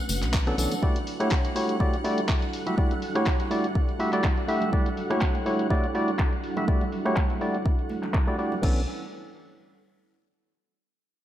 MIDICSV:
0, 0, Header, 1, 6, 480
1, 0, Start_track
1, 0, Key_signature, 2, "minor"
1, 0, Tempo, 487805
1, 814, Time_signature, 4, 2, 24, 8
1, 11069, End_track
2, 0, Start_track
2, 0, Title_t, "String machine"
2, 0, Program_c, 0, 50
2, 0, Note_on_c, 0, 78, 82
2, 0, Note_on_c, 0, 90, 82
2, 8504, Note_off_c, 0, 78, 0
2, 8504, Note_off_c, 0, 90, 0
2, 11069, End_track
3, 0, Start_track
3, 0, Title_t, "Synth stab"
3, 0, Program_c, 1, 62
3, 460, Note_on_c, 1, 52, 85
3, 462, Note_on_c, 1, 59, 78
3, 464, Note_on_c, 1, 61, 82
3, 466, Note_on_c, 1, 62, 81
3, 468, Note_on_c, 1, 69, 99
3, 545, Note_off_c, 1, 52, 0
3, 546, Note_off_c, 1, 59, 0
3, 547, Note_off_c, 1, 61, 0
3, 548, Note_off_c, 1, 62, 0
3, 549, Note_off_c, 1, 69, 0
3, 569, Note_on_c, 1, 52, 77
3, 571, Note_on_c, 1, 59, 67
3, 573, Note_on_c, 1, 61, 71
3, 575, Note_on_c, 1, 62, 70
3, 577, Note_on_c, 1, 69, 81
3, 728, Note_off_c, 1, 52, 0
3, 730, Note_off_c, 1, 59, 0
3, 731, Note_off_c, 1, 61, 0
3, 732, Note_off_c, 1, 62, 0
3, 732, Note_off_c, 1, 69, 0
3, 809, Note_on_c, 1, 57, 74
3, 811, Note_on_c, 1, 64, 73
3, 813, Note_on_c, 1, 66, 69
3, 815, Note_on_c, 1, 67, 73
3, 817, Note_on_c, 1, 74, 85
3, 968, Note_off_c, 1, 57, 0
3, 969, Note_off_c, 1, 64, 0
3, 970, Note_off_c, 1, 66, 0
3, 972, Note_off_c, 1, 67, 0
3, 972, Note_off_c, 1, 74, 0
3, 1180, Note_on_c, 1, 57, 91
3, 1182, Note_on_c, 1, 64, 84
3, 1184, Note_on_c, 1, 66, 83
3, 1186, Note_on_c, 1, 67, 81
3, 1188, Note_on_c, 1, 73, 100
3, 1323, Note_off_c, 1, 57, 0
3, 1324, Note_off_c, 1, 64, 0
3, 1325, Note_off_c, 1, 66, 0
3, 1326, Note_off_c, 1, 67, 0
3, 1327, Note_off_c, 1, 73, 0
3, 1529, Note_on_c, 1, 57, 84
3, 1531, Note_on_c, 1, 64, 79
3, 1533, Note_on_c, 1, 66, 78
3, 1535, Note_on_c, 1, 67, 77
3, 1537, Note_on_c, 1, 73, 94
3, 1745, Note_off_c, 1, 57, 0
3, 1746, Note_off_c, 1, 64, 0
3, 1747, Note_off_c, 1, 66, 0
3, 1748, Note_off_c, 1, 67, 0
3, 1749, Note_off_c, 1, 73, 0
3, 1769, Note_on_c, 1, 57, 97
3, 1771, Note_on_c, 1, 64, 89
3, 1773, Note_on_c, 1, 66, 93
3, 1775, Note_on_c, 1, 67, 96
3, 1777, Note_on_c, 1, 74, 107
3, 1928, Note_off_c, 1, 57, 0
3, 1929, Note_off_c, 1, 64, 0
3, 1930, Note_off_c, 1, 66, 0
3, 1931, Note_off_c, 1, 67, 0
3, 1932, Note_off_c, 1, 74, 0
3, 2009, Note_on_c, 1, 57, 99
3, 2011, Note_on_c, 1, 64, 90
3, 2013, Note_on_c, 1, 66, 89
3, 2016, Note_on_c, 1, 67, 90
3, 2017, Note_on_c, 1, 74, 106
3, 2169, Note_off_c, 1, 57, 0
3, 2170, Note_off_c, 1, 64, 0
3, 2171, Note_off_c, 1, 66, 0
3, 2172, Note_off_c, 1, 67, 0
3, 2173, Note_off_c, 1, 74, 0
3, 2620, Note_on_c, 1, 57, 77
3, 2622, Note_on_c, 1, 64, 67
3, 2623, Note_on_c, 1, 66, 67
3, 2626, Note_on_c, 1, 67, 70
3, 2628, Note_on_c, 1, 76, 80
3, 2705, Note_off_c, 1, 57, 0
3, 2706, Note_off_c, 1, 64, 0
3, 2707, Note_off_c, 1, 66, 0
3, 2708, Note_off_c, 1, 67, 0
3, 2709, Note_off_c, 1, 76, 0
3, 2729, Note_on_c, 1, 57, 77
3, 2731, Note_on_c, 1, 64, 72
3, 2735, Note_on_c, 1, 67, 75
3, 2737, Note_on_c, 1, 74, 83
3, 2888, Note_off_c, 1, 57, 0
3, 2890, Note_off_c, 1, 64, 0
3, 2892, Note_off_c, 1, 67, 0
3, 2893, Note_off_c, 1, 74, 0
3, 3100, Note_on_c, 1, 57, 95
3, 3102, Note_on_c, 1, 64, 83
3, 3104, Note_on_c, 1, 66, 84
3, 3106, Note_on_c, 1, 67, 87
3, 3108, Note_on_c, 1, 73, 108
3, 3243, Note_off_c, 1, 57, 0
3, 3244, Note_off_c, 1, 64, 0
3, 3245, Note_off_c, 1, 66, 0
3, 3246, Note_off_c, 1, 67, 0
3, 3247, Note_off_c, 1, 73, 0
3, 3449, Note_on_c, 1, 57, 85
3, 3451, Note_on_c, 1, 64, 79
3, 3453, Note_on_c, 1, 66, 78
3, 3455, Note_on_c, 1, 67, 75
3, 3457, Note_on_c, 1, 74, 93
3, 3608, Note_off_c, 1, 57, 0
3, 3610, Note_off_c, 1, 64, 0
3, 3611, Note_off_c, 1, 66, 0
3, 3612, Note_off_c, 1, 67, 0
3, 3613, Note_off_c, 1, 74, 0
3, 3929, Note_on_c, 1, 57, 95
3, 3931, Note_on_c, 1, 64, 88
3, 3933, Note_on_c, 1, 66, 91
3, 3936, Note_on_c, 1, 67, 90
3, 3937, Note_on_c, 1, 76, 106
3, 4042, Note_off_c, 1, 57, 0
3, 4043, Note_off_c, 1, 64, 0
3, 4044, Note_off_c, 1, 66, 0
3, 4045, Note_off_c, 1, 67, 0
3, 4046, Note_off_c, 1, 76, 0
3, 4060, Note_on_c, 1, 57, 88
3, 4062, Note_on_c, 1, 64, 80
3, 4064, Note_on_c, 1, 66, 78
3, 4066, Note_on_c, 1, 67, 81
3, 4068, Note_on_c, 1, 74, 97
3, 4203, Note_off_c, 1, 57, 0
3, 4204, Note_off_c, 1, 64, 0
3, 4205, Note_off_c, 1, 66, 0
3, 4206, Note_off_c, 1, 67, 0
3, 4207, Note_off_c, 1, 74, 0
3, 4409, Note_on_c, 1, 57, 100
3, 4411, Note_on_c, 1, 64, 86
3, 4413, Note_on_c, 1, 66, 89
3, 4415, Note_on_c, 1, 67, 90
3, 4417, Note_on_c, 1, 76, 104
3, 4625, Note_off_c, 1, 57, 0
3, 4626, Note_off_c, 1, 64, 0
3, 4627, Note_off_c, 1, 66, 0
3, 4628, Note_off_c, 1, 67, 0
3, 4629, Note_off_c, 1, 76, 0
3, 4649, Note_on_c, 1, 57, 74
3, 4651, Note_on_c, 1, 64, 72
3, 4653, Note_on_c, 1, 66, 71
3, 4655, Note_on_c, 1, 67, 70
3, 4657, Note_on_c, 1, 74, 89
3, 4808, Note_off_c, 1, 57, 0
3, 4809, Note_off_c, 1, 64, 0
3, 4810, Note_off_c, 1, 66, 0
3, 4811, Note_off_c, 1, 67, 0
3, 4812, Note_off_c, 1, 74, 0
3, 5019, Note_on_c, 1, 57, 92
3, 5021, Note_on_c, 1, 64, 80
3, 5023, Note_on_c, 1, 66, 82
3, 5025, Note_on_c, 1, 67, 82
3, 5027, Note_on_c, 1, 73, 98
3, 5163, Note_off_c, 1, 57, 0
3, 5164, Note_off_c, 1, 64, 0
3, 5165, Note_off_c, 1, 66, 0
3, 5166, Note_off_c, 1, 67, 0
3, 5167, Note_off_c, 1, 73, 0
3, 5369, Note_on_c, 1, 57, 87
3, 5371, Note_on_c, 1, 64, 78
3, 5373, Note_on_c, 1, 66, 79
3, 5375, Note_on_c, 1, 67, 80
3, 5377, Note_on_c, 1, 73, 97
3, 5585, Note_off_c, 1, 57, 0
3, 5586, Note_off_c, 1, 64, 0
3, 5587, Note_off_c, 1, 66, 0
3, 5588, Note_off_c, 1, 67, 0
3, 5589, Note_off_c, 1, 73, 0
3, 5609, Note_on_c, 1, 57, 107
3, 5611, Note_on_c, 1, 64, 88
3, 5613, Note_on_c, 1, 66, 90
3, 5615, Note_on_c, 1, 67, 95
3, 5617, Note_on_c, 1, 74, 114
3, 5769, Note_off_c, 1, 57, 0
3, 5769, Note_off_c, 1, 64, 0
3, 5770, Note_off_c, 1, 66, 0
3, 5772, Note_off_c, 1, 67, 0
3, 5773, Note_off_c, 1, 74, 0
3, 5849, Note_on_c, 1, 57, 94
3, 5851, Note_on_c, 1, 64, 85
3, 5853, Note_on_c, 1, 66, 93
3, 5855, Note_on_c, 1, 67, 89
3, 5857, Note_on_c, 1, 74, 106
3, 6008, Note_off_c, 1, 57, 0
3, 6009, Note_off_c, 1, 64, 0
3, 6010, Note_off_c, 1, 66, 0
3, 6011, Note_off_c, 1, 67, 0
3, 6012, Note_off_c, 1, 74, 0
3, 6460, Note_on_c, 1, 57, 70
3, 6462, Note_on_c, 1, 64, 67
3, 6464, Note_on_c, 1, 66, 65
3, 6466, Note_on_c, 1, 67, 68
3, 6468, Note_on_c, 1, 76, 84
3, 6545, Note_off_c, 1, 57, 0
3, 6546, Note_off_c, 1, 64, 0
3, 6547, Note_off_c, 1, 66, 0
3, 6548, Note_off_c, 1, 67, 0
3, 6549, Note_off_c, 1, 76, 0
3, 6569, Note_on_c, 1, 57, 83
3, 6571, Note_on_c, 1, 64, 73
3, 6577, Note_on_c, 1, 74, 90
3, 6729, Note_off_c, 1, 57, 0
3, 6730, Note_off_c, 1, 64, 0
3, 6733, Note_off_c, 1, 74, 0
3, 6940, Note_on_c, 1, 57, 95
3, 6942, Note_on_c, 1, 64, 89
3, 6944, Note_on_c, 1, 66, 89
3, 6946, Note_on_c, 1, 67, 88
3, 6948, Note_on_c, 1, 73, 102
3, 7083, Note_off_c, 1, 57, 0
3, 7084, Note_off_c, 1, 64, 0
3, 7085, Note_off_c, 1, 66, 0
3, 7086, Note_off_c, 1, 67, 0
3, 7087, Note_off_c, 1, 73, 0
3, 7289, Note_on_c, 1, 57, 82
3, 7291, Note_on_c, 1, 64, 75
3, 7293, Note_on_c, 1, 66, 77
3, 7295, Note_on_c, 1, 67, 75
3, 7297, Note_on_c, 1, 74, 89
3, 7448, Note_off_c, 1, 57, 0
3, 7450, Note_off_c, 1, 64, 0
3, 7451, Note_off_c, 1, 66, 0
3, 7452, Note_off_c, 1, 67, 0
3, 7453, Note_off_c, 1, 74, 0
3, 8140, Note_on_c, 1, 57, 89
3, 8142, Note_on_c, 1, 64, 82
3, 8144, Note_on_c, 1, 66, 78
3, 8146, Note_on_c, 1, 67, 79
3, 8148, Note_on_c, 1, 74, 97
3, 8225, Note_off_c, 1, 57, 0
3, 8226, Note_off_c, 1, 64, 0
3, 8227, Note_off_c, 1, 66, 0
3, 8228, Note_off_c, 1, 67, 0
3, 8229, Note_off_c, 1, 74, 0
3, 8249, Note_on_c, 1, 57, 71
3, 8251, Note_on_c, 1, 64, 68
3, 8253, Note_on_c, 1, 66, 69
3, 8255, Note_on_c, 1, 67, 69
3, 8257, Note_on_c, 1, 74, 84
3, 8408, Note_off_c, 1, 57, 0
3, 8410, Note_off_c, 1, 64, 0
3, 8411, Note_off_c, 1, 66, 0
3, 8412, Note_off_c, 1, 67, 0
3, 8413, Note_off_c, 1, 74, 0
3, 8481, Note_on_c, 1, 52, 82
3, 8487, Note_on_c, 1, 59, 74
3, 8493, Note_on_c, 1, 61, 76
3, 8499, Note_on_c, 1, 62, 78
3, 8505, Note_on_c, 1, 69, 91
3, 8669, Note_off_c, 1, 52, 0
3, 8672, Note_off_c, 1, 59, 0
3, 8676, Note_off_c, 1, 61, 0
3, 8679, Note_off_c, 1, 62, 0
3, 8682, Note_off_c, 1, 69, 0
3, 11069, End_track
4, 0, Start_track
4, 0, Title_t, "Analog synth pad"
4, 0, Program_c, 2, 89
4, 0, Note_on_c, 2, 57, 76
4, 0, Note_on_c, 2, 61, 68
4, 0, Note_on_c, 2, 62, 69
4, 0, Note_on_c, 2, 66, 68
4, 0, Note_on_c, 2, 71, 86
4, 774, Note_off_c, 2, 57, 0
4, 774, Note_off_c, 2, 61, 0
4, 774, Note_off_c, 2, 71, 0
4, 812, Note_on_c, 2, 55, 75
4, 812, Note_on_c, 2, 64, 69
4, 812, Note_on_c, 2, 69, 82
4, 8453, Note_off_c, 2, 55, 0
4, 8453, Note_off_c, 2, 64, 0
4, 8453, Note_off_c, 2, 69, 0
4, 8454, Note_off_c, 2, 62, 0
4, 8454, Note_off_c, 2, 66, 0
4, 11069, End_track
5, 0, Start_track
5, 0, Title_t, "FM bass"
5, 0, Program_c, 3, 39
5, 93, Note_on_c, 3, 30, 81
5, 224, Note_on_c, 3, 35, 105
5, 239, Note_off_c, 3, 30, 0
5, 517, Note_off_c, 3, 35, 0
5, 573, Note_on_c, 3, 35, 84
5, 662, Note_off_c, 3, 35, 0
5, 8493, Note_on_c, 3, 35, 96
5, 8717, Note_off_c, 3, 35, 0
5, 11069, End_track
6, 0, Start_track
6, 0, Title_t, "Drums"
6, 88, Note_on_c, 9, 54, 99
6, 92, Note_on_c, 9, 63, 73
6, 93, Note_on_c, 9, 46, 110
6, 186, Note_off_c, 9, 54, 0
6, 191, Note_off_c, 9, 46, 0
6, 191, Note_off_c, 9, 63, 0
6, 220, Note_on_c, 9, 54, 36
6, 222, Note_on_c, 9, 39, 38
6, 224, Note_on_c, 9, 42, 61
6, 318, Note_off_c, 9, 54, 0
6, 321, Note_off_c, 9, 39, 0
6, 322, Note_off_c, 9, 42, 0
6, 326, Note_on_c, 9, 54, 51
6, 332, Note_on_c, 9, 39, 119
6, 333, Note_on_c, 9, 36, 123
6, 425, Note_off_c, 9, 54, 0
6, 430, Note_off_c, 9, 39, 0
6, 432, Note_off_c, 9, 36, 0
6, 464, Note_on_c, 9, 37, 59
6, 464, Note_on_c, 9, 42, 34
6, 562, Note_off_c, 9, 37, 0
6, 562, Note_off_c, 9, 42, 0
6, 573, Note_on_c, 9, 46, 117
6, 579, Note_on_c, 9, 54, 95
6, 671, Note_off_c, 9, 46, 0
6, 677, Note_off_c, 9, 54, 0
6, 704, Note_on_c, 9, 42, 60
6, 704, Note_on_c, 9, 54, 44
6, 705, Note_on_c, 9, 63, 67
6, 708, Note_on_c, 9, 64, 72
6, 802, Note_off_c, 9, 42, 0
6, 802, Note_off_c, 9, 54, 0
6, 803, Note_off_c, 9, 63, 0
6, 807, Note_off_c, 9, 64, 0
6, 813, Note_on_c, 9, 36, 120
6, 912, Note_off_c, 9, 36, 0
6, 944, Note_on_c, 9, 42, 51
6, 948, Note_on_c, 9, 64, 70
6, 1042, Note_off_c, 9, 42, 0
6, 1047, Note_off_c, 9, 64, 0
6, 1053, Note_on_c, 9, 46, 101
6, 1151, Note_off_c, 9, 46, 0
6, 1184, Note_on_c, 9, 37, 62
6, 1184, Note_on_c, 9, 42, 62
6, 1192, Note_on_c, 9, 63, 76
6, 1282, Note_off_c, 9, 37, 0
6, 1282, Note_off_c, 9, 42, 0
6, 1290, Note_off_c, 9, 63, 0
6, 1291, Note_on_c, 9, 39, 113
6, 1293, Note_on_c, 9, 36, 119
6, 1389, Note_off_c, 9, 39, 0
6, 1392, Note_off_c, 9, 36, 0
6, 1424, Note_on_c, 9, 42, 54
6, 1427, Note_on_c, 9, 63, 59
6, 1522, Note_off_c, 9, 42, 0
6, 1525, Note_off_c, 9, 63, 0
6, 1533, Note_on_c, 9, 46, 106
6, 1631, Note_off_c, 9, 46, 0
6, 1664, Note_on_c, 9, 42, 60
6, 1762, Note_off_c, 9, 42, 0
6, 1773, Note_on_c, 9, 36, 112
6, 1872, Note_off_c, 9, 36, 0
6, 1904, Note_on_c, 9, 42, 36
6, 2002, Note_off_c, 9, 42, 0
6, 2013, Note_on_c, 9, 46, 107
6, 2111, Note_off_c, 9, 46, 0
6, 2144, Note_on_c, 9, 42, 65
6, 2242, Note_off_c, 9, 42, 0
6, 2251, Note_on_c, 9, 39, 116
6, 2253, Note_on_c, 9, 36, 125
6, 2350, Note_off_c, 9, 39, 0
6, 2352, Note_off_c, 9, 36, 0
6, 2384, Note_on_c, 9, 42, 37
6, 2482, Note_off_c, 9, 42, 0
6, 2493, Note_on_c, 9, 46, 107
6, 2591, Note_off_c, 9, 46, 0
6, 2622, Note_on_c, 9, 63, 59
6, 2622, Note_on_c, 9, 64, 75
6, 2624, Note_on_c, 9, 42, 64
6, 2720, Note_off_c, 9, 63, 0
6, 2721, Note_off_c, 9, 64, 0
6, 2722, Note_off_c, 9, 42, 0
6, 2733, Note_on_c, 9, 36, 111
6, 2832, Note_off_c, 9, 36, 0
6, 2864, Note_on_c, 9, 42, 52
6, 2879, Note_on_c, 9, 64, 67
6, 2962, Note_off_c, 9, 42, 0
6, 2973, Note_on_c, 9, 46, 102
6, 2978, Note_off_c, 9, 64, 0
6, 3071, Note_off_c, 9, 46, 0
6, 3104, Note_on_c, 9, 37, 69
6, 3104, Note_on_c, 9, 42, 63
6, 3106, Note_on_c, 9, 63, 82
6, 3202, Note_off_c, 9, 37, 0
6, 3202, Note_off_c, 9, 42, 0
6, 3205, Note_off_c, 9, 63, 0
6, 3211, Note_on_c, 9, 39, 116
6, 3213, Note_on_c, 9, 36, 119
6, 3310, Note_off_c, 9, 39, 0
6, 3312, Note_off_c, 9, 36, 0
6, 3343, Note_on_c, 9, 63, 55
6, 3344, Note_on_c, 9, 42, 55
6, 3441, Note_off_c, 9, 63, 0
6, 3442, Note_off_c, 9, 42, 0
6, 3453, Note_on_c, 9, 46, 106
6, 3551, Note_off_c, 9, 46, 0
6, 3584, Note_on_c, 9, 42, 59
6, 3682, Note_off_c, 9, 42, 0
6, 3693, Note_on_c, 9, 36, 112
6, 3792, Note_off_c, 9, 36, 0
6, 3824, Note_on_c, 9, 42, 37
6, 3922, Note_off_c, 9, 42, 0
6, 3933, Note_on_c, 9, 46, 98
6, 4031, Note_off_c, 9, 46, 0
6, 4062, Note_on_c, 9, 39, 36
6, 4063, Note_on_c, 9, 42, 68
6, 4160, Note_off_c, 9, 39, 0
6, 4162, Note_off_c, 9, 42, 0
6, 4171, Note_on_c, 9, 39, 113
6, 4173, Note_on_c, 9, 36, 122
6, 4270, Note_off_c, 9, 39, 0
6, 4272, Note_off_c, 9, 36, 0
6, 4303, Note_on_c, 9, 42, 36
6, 4402, Note_off_c, 9, 42, 0
6, 4413, Note_on_c, 9, 46, 101
6, 4511, Note_off_c, 9, 46, 0
6, 4536, Note_on_c, 9, 63, 51
6, 4541, Note_on_c, 9, 64, 66
6, 4543, Note_on_c, 9, 42, 65
6, 4634, Note_off_c, 9, 63, 0
6, 4639, Note_off_c, 9, 64, 0
6, 4642, Note_off_c, 9, 42, 0
6, 4653, Note_on_c, 9, 36, 112
6, 4752, Note_off_c, 9, 36, 0
6, 4778, Note_on_c, 9, 64, 72
6, 4783, Note_on_c, 9, 42, 55
6, 4876, Note_off_c, 9, 64, 0
6, 4882, Note_off_c, 9, 42, 0
6, 4893, Note_on_c, 9, 46, 97
6, 4991, Note_off_c, 9, 46, 0
6, 5023, Note_on_c, 9, 37, 71
6, 5023, Note_on_c, 9, 42, 68
6, 5026, Note_on_c, 9, 63, 84
6, 5122, Note_off_c, 9, 37, 0
6, 5122, Note_off_c, 9, 42, 0
6, 5125, Note_off_c, 9, 63, 0
6, 5131, Note_on_c, 9, 39, 118
6, 5133, Note_on_c, 9, 36, 121
6, 5229, Note_off_c, 9, 39, 0
6, 5232, Note_off_c, 9, 36, 0
6, 5259, Note_on_c, 9, 63, 58
6, 5263, Note_on_c, 9, 42, 56
6, 5357, Note_off_c, 9, 63, 0
6, 5362, Note_off_c, 9, 42, 0
6, 5373, Note_on_c, 9, 46, 106
6, 5471, Note_off_c, 9, 46, 0
6, 5503, Note_on_c, 9, 42, 66
6, 5601, Note_off_c, 9, 42, 0
6, 5613, Note_on_c, 9, 36, 107
6, 5712, Note_off_c, 9, 36, 0
6, 5743, Note_on_c, 9, 42, 39
6, 5842, Note_off_c, 9, 42, 0
6, 5853, Note_on_c, 9, 46, 100
6, 5951, Note_off_c, 9, 46, 0
6, 5983, Note_on_c, 9, 42, 69
6, 6082, Note_off_c, 9, 42, 0
6, 6091, Note_on_c, 9, 39, 114
6, 6093, Note_on_c, 9, 36, 118
6, 6189, Note_off_c, 9, 39, 0
6, 6191, Note_off_c, 9, 36, 0
6, 6224, Note_on_c, 9, 42, 36
6, 6322, Note_off_c, 9, 42, 0
6, 6333, Note_on_c, 9, 46, 103
6, 6431, Note_off_c, 9, 46, 0
6, 6461, Note_on_c, 9, 64, 77
6, 6462, Note_on_c, 9, 63, 58
6, 6463, Note_on_c, 9, 42, 66
6, 6560, Note_off_c, 9, 64, 0
6, 6561, Note_off_c, 9, 63, 0
6, 6562, Note_off_c, 9, 42, 0
6, 6573, Note_on_c, 9, 36, 116
6, 6672, Note_off_c, 9, 36, 0
6, 6703, Note_on_c, 9, 42, 57
6, 6703, Note_on_c, 9, 64, 80
6, 6802, Note_off_c, 9, 42, 0
6, 6802, Note_off_c, 9, 64, 0
6, 6813, Note_on_c, 9, 46, 107
6, 6911, Note_off_c, 9, 46, 0
6, 6943, Note_on_c, 9, 37, 69
6, 6943, Note_on_c, 9, 42, 68
6, 6945, Note_on_c, 9, 63, 79
6, 7042, Note_off_c, 9, 37, 0
6, 7042, Note_off_c, 9, 42, 0
6, 7043, Note_off_c, 9, 63, 0
6, 7051, Note_on_c, 9, 39, 123
6, 7053, Note_on_c, 9, 36, 119
6, 7149, Note_off_c, 9, 39, 0
6, 7152, Note_off_c, 9, 36, 0
6, 7179, Note_on_c, 9, 63, 53
6, 7183, Note_on_c, 9, 42, 60
6, 7278, Note_off_c, 9, 63, 0
6, 7282, Note_off_c, 9, 42, 0
6, 7293, Note_on_c, 9, 46, 109
6, 7391, Note_off_c, 9, 46, 0
6, 7424, Note_on_c, 9, 42, 64
6, 7522, Note_off_c, 9, 42, 0
6, 7533, Note_on_c, 9, 36, 108
6, 7632, Note_off_c, 9, 36, 0
6, 7664, Note_on_c, 9, 42, 39
6, 7762, Note_off_c, 9, 42, 0
6, 7767, Note_on_c, 9, 63, 80
6, 7773, Note_on_c, 9, 46, 101
6, 7866, Note_off_c, 9, 63, 0
6, 7871, Note_off_c, 9, 46, 0
6, 7902, Note_on_c, 9, 39, 37
6, 7904, Note_on_c, 9, 42, 72
6, 7907, Note_on_c, 9, 64, 77
6, 8000, Note_off_c, 9, 39, 0
6, 8002, Note_off_c, 9, 42, 0
6, 8006, Note_off_c, 9, 64, 0
6, 8011, Note_on_c, 9, 39, 126
6, 8013, Note_on_c, 9, 36, 121
6, 8110, Note_off_c, 9, 39, 0
6, 8112, Note_off_c, 9, 36, 0
6, 8144, Note_on_c, 9, 42, 38
6, 8242, Note_off_c, 9, 42, 0
6, 8253, Note_on_c, 9, 46, 105
6, 8352, Note_off_c, 9, 46, 0
6, 8382, Note_on_c, 9, 64, 80
6, 8384, Note_on_c, 9, 42, 71
6, 8384, Note_on_c, 9, 63, 56
6, 8480, Note_off_c, 9, 64, 0
6, 8482, Note_off_c, 9, 42, 0
6, 8483, Note_off_c, 9, 63, 0
6, 8493, Note_on_c, 9, 36, 112
6, 8493, Note_on_c, 9, 49, 84
6, 8592, Note_off_c, 9, 36, 0
6, 8592, Note_off_c, 9, 49, 0
6, 11069, End_track
0, 0, End_of_file